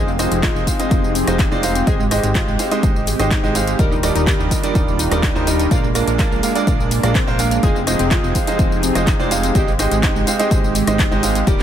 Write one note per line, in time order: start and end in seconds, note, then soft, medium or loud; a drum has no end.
0.00 0.27 F1 loud
0.00 1.85 F3 medium
0.00 3.75 C4 medium
0.00 1.85 D#4 medium
0.00 5.67 G4 medium
0.00 1.85 G#4 medium
0.07 0.14 C4 medium
0.07 tambourine soft
0.19 0.40 G#3 medium
0.19 0.27 C4 medium
0.19 0.40 D#4 medium
0.19 0.40 F4 medium
0.19 0.40 C5 medium
0.19 0.40 D#5 medium
0.19 cross-stick medium
0.19 open hi-hat loud
0.19 tambourine medium
0.31 0.50 F1 medium
0.31 0.38 C4 medium
0.31 closed hi-hat medium
0.31 tambourine soft
0.43 0.64 G#3 medium
0.43 0.64 D#4 medium
0.43 0.50 F4 medium
0.43 0.64 F4 medium
0.43 0.64 C5 medium
0.43 kick loud
0.43 clap loud
0.43 closed hi-hat medium
0.43 tambourine soft
0.55 0.65 F1 medium
0.55 0.62 C4 medium
0.55 tambourine soft
0.67 0.78 G#3 medium
0.67 0.78 D#4 medium
0.67 0.78 F4 medium
0.67 0.78 C5 medium
0.67 0.78 F5 medium
0.67 kick medium
0.67 open hi-hat loud
0.67 tambourine medium
0.79 0.89 G#3 loud
0.79 0.86 C4 medium
0.79 0.89 D#4 medium
0.79 0.89 F4 loud
0.79 0.89 C5 medium
0.79 0.89 D#5 loud
0.79 closed hi-hat medium
0.79 tambourine soft
0.91 1.23 F1 medium
0.91 1.12 G#3 medium
0.91 0.98 C4 medium
0.91 1.12 D#4 medium
0.91 1.12 F4 medium
0.91 1.12 D#5 loud
0.91 kick loud
0.91 closed hi-hat medium
0.91 tambourine soft
1.04 tambourine soft
1.15 1.22 C4 medium
1.15 open hi-hat loud
1.15 tambourine medium
1.27 1.46 F1 loud
1.27 1.48 G#3 medium
1.27 1.34 C4 medium
1.27 1.48 D#4 medium
1.27 1.48 F4 medium
1.27 1.48 C5 medium
1.27 1.48 D#5 loud
1.27 cross-stick medium
1.27 closed hi-hat medium
1.27 tambourine soft
1.39 1.46 D#4 medium
1.39 kick loud
1.39 clap loud
1.39 closed hi-hat medium
1.39 tambourine soft
1.51 1.83 F1 medium
1.51 1.61 G#3 loud
1.51 1.58 C4 medium
1.51 1.61 D#4 medium
1.51 1.61 F4 medium
1.51 1.61 C5 medium
1.51 1.61 D5 loud
1.51 tambourine soft
1.63 1.84 G#3 medium
1.63 1.71 C4 medium
1.63 1.84 D#4 medium
1.63 1.84 F4 medium
1.63 1.84 C5 medium
1.63 1.84 F5 loud
1.63 open hi-hat loud
1.63 tambourine medium
1.75 1.82 C4 medium
1.75 closed hi-hat medium
1.75 tambourine soft
1.87 2.19 G#1 loud
1.87 3.77 G#3 medium
1.87 2.01 G#3 loud
1.87 2.01 D#4 medium
1.87 2.01 G4 medium
1.87 1.94 G#4 loud
1.87 2.01 C5 medium
1.87 2.01 D#5 loud
1.87 kick loud
1.87 closed hi-hat soft
1.87 tambourine soft
1.99 2.06 G#3 medium
1.99 tambourine soft
2.11 2.32 G#3 medium
2.11 2.18 G#3 medium
2.11 2.32 D#4 medium
2.11 2.32 G4 medium
2.11 2.32 C5 medium
2.11 2.32 D#5 loud
2.11 cross-stick medium
2.11 open hi-hat loud
2.11 tambourine medium
2.23 2.42 G#1 medium
2.23 2.30 G#3 medium
2.23 closed hi-hat medium
2.23 tambourine soft
2.35 2.56 G#3 medium
2.35 2.56 D#4 medium
2.35 2.43 F4 loud
2.35 2.56 G4 medium
2.35 2.56 C5 medium
2.35 2.56 D#5 loud
2.35 kick loud
2.35 clap loud
2.35 closed hi-hat medium
2.35 tambourine soft
2.47 2.57 G#1 medium
2.47 2.54 G#3 medium
2.47 tambourine soft
2.59 2.70 G#3 medium
2.59 2.70 D#4 medium
2.59 2.70 G4 medium
2.59 2.70 C5 medium
2.59 2.70 F5 medium
2.59 open hi-hat loud
2.59 tambourine medium
2.71 2.81 G#3 loud
2.71 2.78 G#3 medium
2.71 2.81 D#4 medium
2.71 2.81 G4 medium
2.71 2.81 C5 medium
2.71 2.81 D#5 loud
2.71 closed hi-hat medium
2.71 tambourine soft
2.83 3.15 G#1 medium
2.83 3.04 G#3 medium
2.83 2.91 G#3 medium
2.83 3.04 D#4 medium
2.83 3.04 G4 medium
2.83 3.04 C5 medium
2.83 3.04 D#5 loud
2.83 kick loud
2.83 closed hi-hat medium
2.83 tambourine soft
2.96 tambourine soft
3.07 3.15 G#3 medium
3.07 open hi-hat loud
3.07 tambourine medium
3.19 3.38 G#1 loud
3.19 3.40 G#3 loud
3.19 3.26 G#3 medium
3.19 3.40 D#4 medium
3.19 3.40 G4 medium
3.19 3.40 C5 medium
3.19 3.40 D#5 loud
3.19 cross-stick medium
3.19 closed hi-hat medium
3.19 tambourine soft
3.31 3.39 D#4 medium
3.31 kick loud
3.31 clap loud
3.31 closed hi-hat medium
3.31 tambourine soft
3.43 3.75 G#1 medium
3.43 3.53 G#3 loud
3.43 3.50 G#3 medium
3.43 3.53 D#4 medium
3.43 3.53 G4 medium
3.43 3.53 C5 medium
3.43 3.53 D#5 loud
3.43 tambourine soft
3.55 3.76 G#3 medium
3.55 3.63 G#3 medium
3.55 3.76 D#4 medium
3.55 3.76 G4 medium
3.55 3.76 C5 medium
3.55 3.76 F5 loud
3.55 open hi-hat loud
3.55 tambourine medium
3.67 3.74 G#3 medium
3.67 closed hi-hat medium
3.67 tambourine soft
3.79 4.11 D#1 loud
3.79 5.69 D#3 medium
3.79 3.93 G3 medium
3.79 7.59 A#3 medium
3.79 3.93 D4 medium
3.79 5.69 D4 medium
3.79 3.93 D#4 medium
3.79 5.69 F4 medium
3.79 3.93 A#4 medium
3.79 3.87 A#4 loud
3.79 3.93 D5 loud
3.79 kick loud
3.79 closed hi-hat soft
3.79 tambourine soft
3.91 3.98 D#4 medium
3.91 tambourine soft
4.03 4.24 G3 medium
4.03 4.24 D4 medium
4.03 4.24 D#4 medium
4.03 4.11 D#4 medium
4.03 4.24 A#4 medium
4.03 4.24 D5 loud
4.03 cross-stick medium
4.03 open hi-hat loud
4.03 tambourine medium
4.15 4.34 D#1 medium
4.15 4.22 D#4 medium
4.15 closed hi-hat medium
4.15 tambourine soft
4.27 4.48 G3 medium
4.27 4.48 D4 medium
4.27 4.48 D#4 medium
4.27 4.34 G4 medium
4.27 4.48 A#4 medium
4.27 4.48 D5 loud
4.27 kick loud
4.27 clap loud
4.27 closed hi-hat soft
4.27 tambourine soft
4.39 4.49 D#1 medium
4.39 4.46 D#4 medium
4.39 tambourine soft
4.51 4.62 G3 medium
4.51 4.62 D4 medium
4.51 4.62 D#4 medium
4.51 4.62 A#4 medium
4.51 4.62 D#5 medium
4.51 kick medium
4.51 open hi-hat loud
4.51 tambourine medium
4.63 4.73 G3 loud
4.63 4.73 D4 medium
4.63 4.73 D#4 medium
4.63 4.70 D#4 medium
4.63 4.73 A#4 medium
4.63 4.73 D5 loud
4.63 closed hi-hat medium
4.63 tambourine soft
4.75 5.07 D#1 medium
4.75 4.96 G3 medium
4.75 4.96 D4 medium
4.75 4.96 D#4 medium
4.75 4.83 D#4 medium
4.75 4.96 A#4 medium
4.75 4.96 D5 loud
4.75 kick loud
4.75 closed hi-hat medium
4.75 tambourine soft
4.88 tambourine soft
4.99 5.07 D#4 medium
4.99 open hi-hat loud
4.99 tambourine medium
5.11 5.30 D#1 loud
5.11 5.32 G3 loud
5.11 5.32 D4 medium
5.11 5.32 D#4 medium
5.11 5.18 D#4 medium
5.11 5.32 A#4 medium
5.11 5.32 D5 loud
5.11 cross-stick medium
5.11 closed hi-hat medium
5.11 tambourine soft
5.23 5.31 D#4 loud
5.23 kick loud
5.23 clap loud
5.23 closed hi-hat soft
5.23 tambourine soft
5.35 5.67 D#1 medium
5.35 5.45 G3 medium
5.35 5.45 D4 medium
5.35 5.45 D#4 medium
5.35 5.42 D#4 medium
5.35 5.45 A#4 medium
5.35 5.45 C5 loud
5.35 tambourine soft
5.47 5.68 G3 medium
5.47 5.68 D4 medium
5.47 5.68 D#4 medium
5.47 5.55 D#4 medium
5.47 5.68 A#4 medium
5.47 5.68 D#5 loud
5.47 open hi-hat loud
5.47 tambourine medium
5.59 5.66 D#4 medium
5.59 closed hi-hat medium
5.59 tambourine soft
5.71 6.03 A#1 loud
5.71 5.85 G#3 medium
5.71 7.61 G#3 medium
5.71 5.85 D4 medium
5.71 7.61 D4 medium
5.71 5.85 F4 medium
5.71 5.79 F4 loud
5.71 5.85 A#4 medium
5.71 5.85 D5 loud
5.71 kick loud
5.71 closed hi-hat soft
5.71 tambourine soft
5.84 5.90 A#3 medium
5.84 tambourine soft
5.95 6.16 G#3 medium
5.95 6.02 A#3 medium
5.95 6.16 D4 medium
5.95 6.16 F4 medium
5.95 6.16 A#4 medium
5.95 6.16 D5 medium
5.95 cross-stick medium
5.95 open hi-hat loud
5.95 tambourine medium
6.07 6.26 A#1 medium
6.07 6.14 A#3 medium
6.07 closed hi-hat medium
6.07 tambourine soft
6.19 6.40 G#3 medium
6.19 6.26 D4 medium
6.19 6.40 D4 medium
6.19 6.40 F4 medium
6.19 6.40 A#4 medium
6.19 6.40 D5 loud
6.19 kick loud
6.19 clap loud
6.19 closed hi-hat soft
6.19 tambourine soft
6.31 6.41 A#1 medium
6.31 6.38 A#3 medium
6.31 tambourine soft
6.43 6.54 G#3 medium
6.43 6.54 D4 medium
6.43 6.54 F4 medium
6.43 6.54 A#4 medium
6.43 6.54 F5 medium
6.43 open hi-hat medium
6.43 tambourine medium
6.55 6.65 G#3 loud
6.55 6.62 A#3 medium
6.55 6.65 D4 medium
6.55 6.65 F4 medium
6.55 6.65 A#4 medium
6.55 6.65 D5 loud
6.55 closed hi-hat medium
6.55 tambourine soft
6.67 6.99 A#1 medium
6.67 6.88 G#3 medium
6.67 6.75 A#3 medium
6.67 6.88 F4 medium
6.67 6.88 A#4 medium
6.67 kick loud
6.67 closed hi-hat medium
6.67 tambourine soft
6.80 tambourine soft
6.91 6.99 A#3 medium
6.91 open hi-hat loud
6.91 tambourine medium
7.03 7.22 A#1 loud
7.03 7.24 G#3 loud
7.03 7.10 A#3 medium
7.03 7.24 D4 medium
7.03 7.24 F4 medium
7.03 7.24 A#4 medium
7.03 7.24 D5 loud
7.03 cross-stick medium
7.03 closed hi-hat medium
7.03 tambourine soft
7.15 7.23 C4 loud
7.15 kick loud
7.15 clap loud
7.15 closed hi-hat medium
7.15 tambourine soft
7.27 7.59 A#1 medium
7.27 7.37 G#3 medium
7.27 7.34 A#3 medium
7.27 7.37 D4 medium
7.27 7.37 F4 medium
7.27 7.37 A#4 medium
7.27 7.37 C5 loud
7.27 tambourine soft
7.39 7.60 G#3 medium
7.39 7.47 A#3 medium
7.39 7.60 D4 medium
7.39 7.60 F4 medium
7.39 7.60 A#4 medium
7.39 7.60 F5 loud
7.39 open hi-hat loud
7.39 tambourine medium
7.51 7.58 A#3 medium
7.51 closed hi-hat medium
7.51 tambourine soft
7.63 7.95 F1 loud
7.63 9.53 F3 medium
7.63 7.77 G#3 loud
7.63 9.53 C4 medium
7.63 7.77 D#4 medium
7.63 9.53 D#4 medium
7.63 7.77 F4 medium
7.63 11.63 G4 medium
7.63 7.71 G#4 loud
7.63 9.53 G#4 medium
7.63 7.77 C5 medium
7.63 7.77 D#5 loud
7.63 kick loud
7.63 closed hi-hat soft
7.63 tambourine soft
7.75 7.82 C4 medium
7.75 tambourine soft
7.87 8.08 G#3 medium
7.87 7.95 C4 medium
7.87 8.08 D#4 medium
7.87 8.08 F4 medium
7.87 8.08 C5 medium
7.87 8.08 D#5 medium
7.87 cross-stick medium
7.87 open hi-hat loud
7.87 tambourine medium
7.99 8.18 F1 medium
7.99 8.06 C4 medium
7.99 closed hi-hat medium
7.99 tambourine soft
8.11 8.32 G#3 medium
8.11 8.32 D#4 medium
8.11 8.32 F4 medium
8.11 8.19 F4 medium
8.11 8.32 C5 medium
8.11 8.32 D#5 loud
8.11 kick loud
8.11 clap loud
8.11 closed hi-hat medium
8.11 tambourine soft
8.23 8.33 F1 medium
8.23 8.30 C4 medium
8.23 tambourine soft
8.35 8.46 G#3 medium
8.35 8.46 D#4 medium
8.35 8.46 F4 medium
8.35 8.46 C5 medium
8.35 8.46 F5 medium
8.35 kick medium
8.35 open hi-hat medium
8.35 tambourine medium
8.47 8.57 G#3 loud
8.47 8.54 C4 medium
8.47 8.57 D#4 medium
8.47 8.57 F4 medium
8.47 8.57 C5 medium
8.47 8.57 D#5 loud
8.47 closed hi-hat medium
8.47 tambourine soft
8.59 8.91 F1 medium
8.59 8.80 G#3 medium
8.59 8.67 C4 medium
8.59 8.80 D#4 medium
8.59 8.80 F4 medium
8.59 8.80 C5 medium
8.59 8.80 D#5 loud
8.59 kick loud
8.59 closed hi-hat medium
8.59 tambourine soft
8.72 tambourine soft
8.83 8.91 C4 medium
8.83 open hi-hat loud
8.83 tambourine medium
8.95 9.14 F1 loud
8.95 9.16 G#3 loud
8.95 9.02 C4 medium
8.95 9.16 D#4 medium
8.95 9.16 F4 medium
8.95 9.16 C5 medium
8.95 9.16 D#5 loud
8.95 cross-stick medium
8.95 closed hi-hat medium
8.95 tambourine soft
9.07 9.15 D#4 medium
9.07 kick loud
9.07 clap loud
9.07 closed hi-hat medium
9.07 tambourine soft
9.19 9.51 F1 medium
9.19 9.29 G#3 loud
9.19 9.26 C4 medium
9.19 9.29 D#4 medium
9.19 9.29 F4 medium
9.19 9.29 C5 medium
9.19 9.29 D5 loud
9.19 tambourine soft
9.31 9.52 G#3 medium
9.31 9.39 C4 medium
9.31 9.52 D#4 medium
9.31 9.52 F4 medium
9.31 9.52 C5 medium
9.31 9.52 F5 loud
9.31 open hi-hat medium
9.31 tambourine medium
9.43 9.50 C4 medium
9.43 closed hi-hat medium
9.43 tambourine soft
9.55 9.87 G#1 loud
9.55 9.69 G#3 loud
9.55 11.45 G#3 medium
9.55 11.45 C4 medium
9.55 9.69 D#4 medium
9.55 9.69 G4 medium
9.55 9.63 G4 loud
9.55 9.69 C5 medium
9.55 9.69 D#5 loud
9.55 kick loud
9.55 closed hi-hat medium
9.55 tambourine soft
9.68 9.74 G#3 medium
9.68 tambourine soft
9.79 10.00 G#3 medium
9.79 9.87 G#3 medium
9.79 10.00 D#4 medium
9.79 10.00 G4 medium
9.79 10.00 C5 medium
9.79 10.00 D#5 loud
9.79 cross-stick medium
9.79 open hi-hat loud
9.79 tambourine medium
9.91 10.10 G#1 medium
9.91 9.98 G#3 medium
9.91 closed hi-hat medium
9.91 tambourine soft
10.03 10.24 G#3 medium
10.03 10.24 D#4 medium
10.03 10.11 D#4 medium
10.03 10.24 G4 medium
10.03 10.24 C5 medium
10.03 10.24 D#5 loud
10.03 kick loud
10.03 clap loud
10.03 closed hi-hat medium
10.03 tambourine soft
10.15 10.25 G#1 medium
10.15 10.22 G#3 medium
10.15 tambourine soft
10.27 10.38 G#3 medium
10.27 10.38 D#4 medium
10.27 10.38 G4 medium
10.27 10.38 C5 medium
10.27 10.38 F5 medium
10.27 open hi-hat medium
10.27 tambourine medium
10.39 10.49 G#3 loud
10.39 10.46 G#3 medium
10.39 10.49 D#4 medium
10.39 10.49 G4 medium
10.39 10.49 C5 medium
10.39 10.49 D#5 loud
10.39 closed hi-hat medium
10.39 tambourine soft
10.51 10.83 G#1 medium
10.51 10.72 G#3 medium
10.51 10.59 G#3 medium
10.51 10.72 D#4 medium
10.51 10.72 G4 medium
10.51 10.72 C5 medium
10.51 kick loud
10.51 closed hi-hat medium
10.51 tambourine soft
10.64 tambourine soft
10.75 10.83 G#3 medium
10.75 open hi-hat loud
10.75 tambourine medium
10.87 11.06 G#1 loud
10.87 11.08 G#3 medium
10.87 10.94 G#3 medium
10.87 11.08 D#4 medium
10.87 11.08 G4 medium
10.87 11.08 C5 medium
10.87 11.08 D#5 loud
10.87 cross-stick medium
10.87 closed hi-hat medium
10.87 tambourine soft
10.99 11.07 D#4 medium
10.99 kick loud
10.99 clap loud
10.99 closed hi-hat medium
10.99 tambourine soft
11.11 11.43 G#1 medium
11.11 11.21 G#3 loud
11.11 11.18 G#3 medium
11.11 11.21 D#4 medium
11.11 11.21 G4 medium
11.11 11.21 C5 medium
11.11 11.21 D#5 loud
11.11 tambourine soft
11.23 11.44 G#3 medium
11.23 11.31 G#3 medium
11.23 11.44 D#4 medium
11.23 11.44 G4 medium
11.23 11.44 C5 medium
11.23 11.44 F5 loud
11.23 open hi-hat medium
11.23 tambourine medium
11.35 11.42 G#3 medium
11.35 closed hi-hat medium
11.35 tambourine soft
11.47 11.63 D#3 medium
11.47 11.61 G3 loud
11.47 11.63 A#3 medium
11.47 11.61 D4 medium
11.47 11.63 D4 medium
11.47 11.61 D#4 medium
11.47 11.63 F4 medium
11.47 11.55 G4 loud
11.47 11.61 A#4 medium
11.47 11.61 D5 loud
11.47 kick loud
11.47 closed hi-hat medium
11.47 tambourine soft
11.60 11.63 A#3 medium
11.60 clap soft